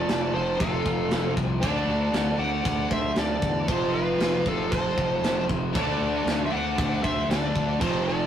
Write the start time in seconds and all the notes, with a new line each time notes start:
Already playing: F2 C3 F3 A4 D5
0.08 F1, snare, crash
0.33 F1 F2 C3 F3 A4 C5
0.60 F1 F4 A4, kick, crash
0.85 F1, kick
1.11 F1, snare, crash
1.37 C2, kick
1.60 D2 D3 A3 A4 D5, kick, crash
1.65 D4
1.87 D2
2.13 D2, snare, crash
2.38 D2 D3 A3 D4 D5 F#5
2.65 D2, kick, crash
2.91 D2 C5 E5, kick
3.16 D2 A4 D5, snare, crash
3.42 E2, kick
3.67 F1 F2 C3 F3 A4 C5, kick, crash
3.93 F4 B4
4.20 F1, snare, crash
4.45 F1 F2 C3 F3 F4 A4, kick
4.71 F1 A4 C5, kick, crash
4.98 F1, kick
5.21 F1, snare, crash
5.49 F1, kick
5.73 D2 D3 A3 D4 A4, kick, crash
5.77 D5
6.00 D2
6.25 D2, snare, crash
6.45 C5 E5
6.50 D2 D3 A3 D4 D5 F#5
6.76 D2 D3 A3 D4, kick, crash
7.03 D2 C5 E5, kick
7.29 D2 A4 D5, snare, crash
7.56 D2, kick
7.79 F1 F2 C3 F3 A4 C5, kick, crash
8.05 A4 D5